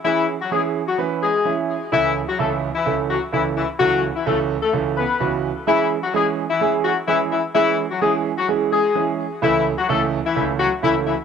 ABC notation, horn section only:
X:1
M:4/4
L:1/16
Q:1/4=128
K:C#phr
V:1 name="Horn section"
[E,E]2 z [F,F] [G,G] z2 [F,F] z2 [G,G]3 z3 | [E,E]2 z [F,F] [A,A] z2 [E,E]2 z [F,F] z [E,E] z [E,E] z | [F,F]2 z [E,E] [A,A] z2 [A,A] z2 [B,B]3 z3 | [E,E]2 z [F,F] [G,G] z2 [E,E]2 z [F,F] z [E,E] z [E,E] z |
[E,E]2 z [F,F] [G,G] z2 [F,F] z2 [G,G]3 z3 | [E,E]2 z [F,F] [A,A] z2 [E,E]2 z [F,F] z [E,E] z [E,E] z |]